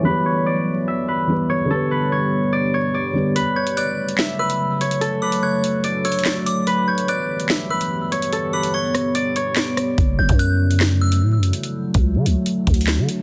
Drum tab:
HH |------------------------------------------------|------------------------------------------------|x--------x--x--------x-----------x--------x--x--|x--------x--------x-----x-----x-x-x-x-----x-----|
CP |------------------------------------------------|------------------------------------------------|------------------------x-----------------------|------------------------------------x-----------|
SD |------------------------------------------------|------------------------------------------------|------------------------o-----------------------|------------------------------------o-----------|
BD |------------------------------------------------|------------------------------------------------|------------------------------------------------|------------------------------------------------|

HH |x--------x--x--------x-----------x--------x--x--|x--------x--------x-----x-----x-----x-----x-----|x--------x--x--------x-----------x--------x--x--|x--------x--------x-----x-----x-x-x-x-----x-----|
CP |------------------------x-----------------------|------------------------------------x-----------|------------------------x-----------------------|------------------------------------x-----------|
SD |------------------------o-----------------------|------------------r-----------------o-----r-----|------------------------o-----------------------|------------------------------------o-----------|
BD |------------------------------------------------|------------------------------------------------|o--------o--------------------------------------|---------o--------------------o-----------------|